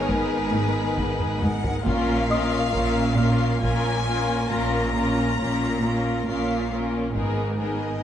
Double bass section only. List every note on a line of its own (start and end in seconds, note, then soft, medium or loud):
0.00 1.86 G#1 medium
1.86 2.64 A#1 medium
2.75 3.52 A#1 medium
3.63 4.41 A#1 medium
4.51 5.29 A#1 medium
5.40 6.17 A#1 soft
6.28 7.05 A#1 soft
7.15 7.93 G#1 soft